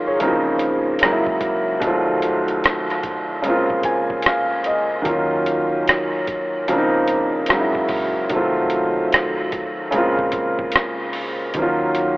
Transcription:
Already playing: D#3 F#3 A#3 C#4 D#4 F4 G#4 A#4
0.07 G#4 C#5
0.20 C#3 E3 A#3 C4 D#4, closed hi-hat
0.27 F3
0.59 closed hi-hat
0.99 C#3 F#3, cross-stick, closed hi-hat
1.03 G#3 A#3 D#4
1.12 E4
1.27 kick
1.41 kick, closed hi-hat
1.80 C2 D#3 F#3, kick, closed hi-hat
1.84 A3 C4 F4
2.22 closed hi-hat
2.48 closed hi-hat
2.64 cross-stick, closed hi-hat
2.90 cross-stick, closed hi-hat
3.03 kick, closed hi-hat
3.42 C#3 G#3 A#3, closed hi-hat
3.48 C4 F4
3.70 kick
3.83 G#5, kick, closed hi-hat
4.10 kick
4.22 cross-stick, closed hi-hat
4.27 F5
4.64 D#5, closed hi-hat
5.02 D#3 F#3 A#3, kick, closed hi-hat
5.06 D#2 C#4 F4
5.46 closed hi-hat
5.88 cross-stick, closed hi-hat
6.27 kick, closed hi-hat
6.68 C#2 C#3 F3 A#3 C4 D4, closed hi-hat
6.78 D#4
7.08 closed hi-hat
7.46 F#1 C#3, cross-stick, closed hi-hat
7.50 F#3 G#3 A#3 D#4
7.59 E4
7.75 kick
7.89 A#1, kick, open hi-hat
8.29 C2 D#3 F#3 A3, kick, closed hi-hat
8.35 C4 F4
8.70 closed hi-hat
9.12 cross-stick, closed hi-hat
9.52 kick, closed hi-hat
9.91 A#1 C#3 G#3 A#3, closed hi-hat
9.96 C4 F4
10.19 kick
10.32 kick, closed hi-hat
10.59 kick
10.72 cross-stick, closed hi-hat
11.13 open hi-hat
11.54 D#2 D#3 F3, kick, closed hi-hat
11.58 A#3 C#4 F4
11.63 F#3
11.95 closed hi-hat

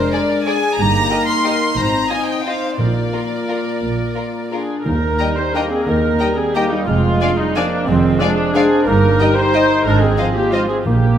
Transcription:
Already playing: G#3 D4 A#4 C5
0.13 G#4 D5
0.46 G#4 D5 G#5
0.78 G1 G2 A#3 D#4 G4 A#5
1.10 G4 A#4 D#5
1.29 C6
1.45 G4 D#5
1.77 G#1 G#2 C4 D#4 C5 A#5
2.10 C4 D#4 F4 D#5 G#5
2.28 G5
2.45 C4 D#4 F4 C5 D#5 F5
2.79 A#1 A#2 A#3 F4 A#4 D5
3.13 F4 A#4
3.49 F4 A#4
3.83 A#1 A#2
4.16 F4 A#4
4.52 D4 F4 G#4 A#4
4.85 D#2 D#3 D#4 A#4
5.19 G3 D#4 D#5 G5 A#5
5.37 D#4 C5
5.54 G3 A#3 D4 D#4 A#4 D#5 G5 A#5
5.70 C4 G#4
5.87 D#2 D#4 A#4
6.20 G3 D#4 D#5 G5 A#5
6.37 C4 G#4
6.54 G3 A#3 D#4 G4 D#5 G5 A#5
6.71 G3 D#4
6.87 F1 F2 G#3 F4
7.20 G#3 D4 D5 F5 G#5
7.38 G3 D#4
7.55 F3 G#3 A#3 D4 D5 F5 G#5
7.88 F1 F2 D#3 G#3 C4
8.21 F3 G#3 D4 D5 F5 G#5
8.54 G#3 C4 D4 G#4 D5 F5 G#5
8.87 G1 G2 A#3 D#4 A#4
9.19 G3 D#4 G4 D#5 G5
9.37 D#4 C5
9.54 G3 D#4 D#5 G5
9.86 G#1 G#2 D4 D#4 A#4
10.02 C4 G#4
10.18 F3 D#4 F4 C5 D#5 F5
10.36 A#3 G4
10.53 F3 G#3 C4 D#4 F4 C5 D#5 F5
10.69 C4 G#4
10.85 A#1 A#2 A#3 G4

